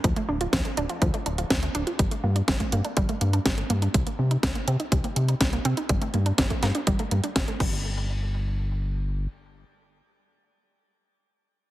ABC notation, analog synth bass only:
X:1
M:4/4
L:1/8
Q:1/4=123
K:Gm
V:1 name="Analog synth bass" clef=bass
D,, D,,, D,, D,,, D,, D,,, D,, D,,, | G,,, G,, G,,, G,, G,,, G,, G,,, G,, | C,, C, C,, C, C,, C, C,, C, | G,,, G,, G,,, G,, G,,, G,, G,,, G,,,- |
G,,,6 z2 | z8 |]